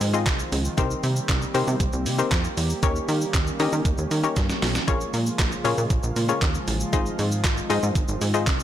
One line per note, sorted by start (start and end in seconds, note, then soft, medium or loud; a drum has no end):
0.00 0.28 G#2 loud
0.00 2.79 D#3 medium
0.00 0.74 F3 medium
0.00 0.74 G#3 medium
0.00 0.76 C4 medium
0.00 0.74 F4 medium
0.00 open hi-hat medium
0.00 downlifter medium
0.00 shaker medium
0.14 0.47 C4 medium
0.14 0.47 D#4 medium
0.14 0.47 F4 medium
0.14 0.48 G#4 medium
0.14 0.48 D#5 loud
0.14 shaker medium
0.26 0.43 C2 loud
0.26 kick loud
0.26 snare medium
0.26 clap loud
0.26 closed hi-hat medium
0.26 shaker medium
0.39 shaker medium
0.52 0.69 C#2 medium
0.52 open hi-hat medium
0.52 shaker medium
0.65 shaker medium
0.77 0.95 C2 loud
0.77 2.81 G3 medium
0.77 6.89 A#3 medium
0.77 1.18 C4 loud
0.77 2.81 C4 medium
0.77 1.18 D#4 medium
0.77 1.18 G4 medium
0.77 4.84 G4 medium
0.77 1.18 A#4 medium
0.77 1.18 C5 loud
0.77 kick loud
0.77 closed hi-hat medium
0.77 shaker medium
0.91 shaker medium
1.03 1.20 C3 loud
1.03 open hi-hat medium
1.03 shaker medium
1.16 shaker medium
1.29 1.46 C2 loud
1.29 kick loud
1.29 snare medium
1.29 clap loud
1.29 closed hi-hat medium
1.29 shaker medium
1.42 shaker soft
1.54 1.63 C3 loud
1.54 1.88 C4 medium
1.54 1.88 D#4 medium
1.54 1.88 G4 medium
1.54 1.88 A#4 medium
1.54 1.89 C5 loud
1.54 open hi-hat medium
1.54 shaker medium
1.68 1.76 C3 loud
1.68 shaker medium
1.80 1.89 C2 loud
1.80 kick loud
1.80 closed hi-hat medium
1.80 shaker medium
1.93 2.08 C2 loud
1.93 shaker medium
2.06 2.23 C3 loud
2.06 open hi-hat medium
2.06 shaker medium
2.19 2.52 C4 medium
2.19 2.53 D#4 medium
2.19 2.53 G4 medium
2.19 2.53 A#4 medium
2.19 2.53 C5 medium
2.19 shaker medium
2.31 2.48 F2 loud
2.31 kick loud
2.31 snare medium
2.31 clap loud
2.31 closed hi-hat medium
2.31 shaker medium
2.44 shaker medium
2.57 2.74 E2 medium
2.57 open hi-hat medium
2.57 shaker medium
2.70 shaker medium
2.83 3.00 D#2 loud
2.83 4.86 D#3 medium
2.83 4.86 G3 medium
2.83 3.23 C#4 loud
2.83 4.86 C#4 medium
2.83 3.23 D#4 medium
2.83 3.23 G4 medium
2.83 3.24 A#4 medium
2.83 3.24 C#5 loud
2.83 kick loud
2.83 closed hi-hat medium
2.83 shaker medium
2.96 shaker medium
3.08 3.25 D#3 loud
3.08 open hi-hat medium
3.08 shaker soft
3.21 shaker medium
3.34 3.51 D#2 loud
3.34 kick loud
3.34 snare medium
3.34 clap loud
3.34 closed hi-hat medium
3.34 shaker medium
3.47 shaker soft
3.60 3.68 D#3 loud
3.60 3.94 C#4 loud
3.60 3.94 D#4 medium
3.60 3.94 G4 medium
3.60 3.94 A#4 medium
3.60 3.94 D#5 loud
3.60 open hi-hat medium
3.60 shaker medium
3.73 3.81 D#3 medium
3.73 shaker medium
3.85 3.94 D#2 loud
3.85 kick loud
3.85 closed hi-hat medium
3.85 shaker medium
3.98 4.07 D#2 medium
3.98 shaker medium
4.11 4.28 D#3 loud
4.11 open hi-hat medium
4.11 shaker medium
4.24 4.57 C#4 medium
4.24 4.58 D#4 medium
4.24 4.58 G4 medium
4.24 4.58 A#4 medium
4.24 4.58 C#5 medium
4.24 shaker medium
4.36 4.53 G2 medium
4.36 kick loud
4.36 snare medium
4.36 closed hi-hat medium
4.36 shaker medium
4.50 snare medium
4.50 shaker medium
4.62 4.79 B1 medium
4.62 snare loud
4.62 open hi-hat medium
4.62 shaker medium
4.75 snare loud
4.75 shaker medium
4.88 5.05 A#1 loud
4.88 6.91 C#3 medium
4.88 8.63 F3 medium
4.88 8.63 G#3 medium
4.88 5.28 C#4 medium
4.88 5.28 F4 medium
4.88 8.63 F4 medium
4.88 5.28 G#4 medium
4.88 5.29 A#4 medium
4.88 5.29 C#5 loud
4.88 kick loud
4.88 closed hi-hat medium
4.88 shaker medium
5.01 shaker soft
5.14 5.30 A#2 loud
5.14 open hi-hat medium
5.14 shaker medium
5.27 shaker medium
5.39 5.56 A#1 loud
5.39 kick loud
5.39 snare medium
5.39 clap loud
5.39 closed hi-hat medium
5.39 shaker medium
5.52 shaker soft
5.64 5.73 A#2 loud
5.64 5.98 C#4 medium
5.64 5.99 F4 medium
5.64 5.99 G#4 medium
5.64 5.99 A#4 medium
5.64 5.99 C#5 loud
5.64 open hi-hat medium
5.64 shaker medium
5.78 5.86 A#2 loud
5.78 shaker medium
5.90 5.99 A#1 loud
5.90 kick loud
5.90 closed hi-hat medium
5.90 shaker medium
6.03 6.12 A#1 loud
6.03 shaker medium
6.16 6.33 A#2 loud
6.16 open hi-hat medium
6.16 shaker medium
6.29 6.63 C#4 medium
6.29 6.63 F4 medium
6.29 6.63 G#4 medium
6.29 6.63 A#4 medium
6.29 6.63 C#5 medium
6.29 shaker medium
6.42 6.59 D#2 loud
6.42 kick loud
6.42 snare medium
6.42 clap loud
6.42 closed hi-hat medium
6.42 shaker medium
6.55 shaker medium
6.68 6.84 A1 medium
6.68 open hi-hat medium
6.68 shaker medium
6.80 shaker medium
6.93 7.10 G#1 loud
6.93 8.63 D#3 medium
6.93 8.63 C4 medium
6.93 7.33 D#4 loud
6.93 7.34 F4 medium
6.93 7.34 G#4 medium
6.93 7.34 C5 medium
6.93 7.34 D#5 loud
6.93 kick loud
6.93 closed hi-hat medium
6.93 shaker medium
7.06 shaker medium
7.19 7.46 G#2 loud
7.19 open hi-hat medium
7.19 shaker soft
7.32 shaker medium
7.44 7.61 G#1 loud
7.44 kick loud
7.44 snare medium
7.44 clap loud
7.44 closed hi-hat medium
7.44 shaker medium
7.57 shaker soft
7.70 7.79 G#2 loud
7.70 8.04 D#4 loud
7.70 8.04 F4 medium
7.70 8.04 G#4 medium
7.70 8.04 C5 medium
7.70 8.04 D#5 loud
7.70 open hi-hat medium
7.70 shaker medium
7.83 7.91 G#2 loud
7.83 shaker medium
7.95 8.04 G#1 loud
7.95 kick loud
7.95 closed hi-hat medium
7.95 shaker medium
8.08 8.17 G#1 loud
8.08 shaker medium
8.21 8.49 G#2 loud
8.21 open hi-hat medium
8.21 shaker medium
8.34 8.63 D#4 medium
8.34 8.63 F4 medium
8.34 8.63 G#4 medium
8.34 8.63 C5 medium
8.34 8.63 D#5 medium
8.34 shaker medium
8.47 8.63 C2 loud
8.47 kick loud
8.47 snare medium
8.47 clap loud
8.47 closed hi-hat medium
8.47 shaker medium
8.60 shaker medium